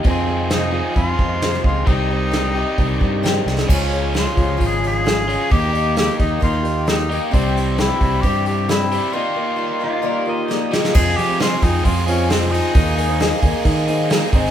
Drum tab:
CC |----------------|----------------|x---------------|----------------|
HH |o---o---o---o---|o---o---o---o---|--o-o-o-o-o-o-o-|o-o-o-o-o-o-o-o-|
SD |----o-------oo--|----o-------o-oo|----o-------o---|----o-------o---|
BD |o-------o-o---o-|o-------o-o-----|o-----o-o-------|o-----o-o-------|

CC |----------------|----------------|x---------------|----------------|
HH |o-o-o-o-o-o-o-o-|----------------|--o-o-o-o-o-o-o-|o-o-o-o-o-o-o-o-|
SD |----o-------o---|------------o-oo|----o-o-----o---|----o-------o--o|
BD |o-----o-o-------|----------------|o-----o-o-------|o-----o-o-----o-|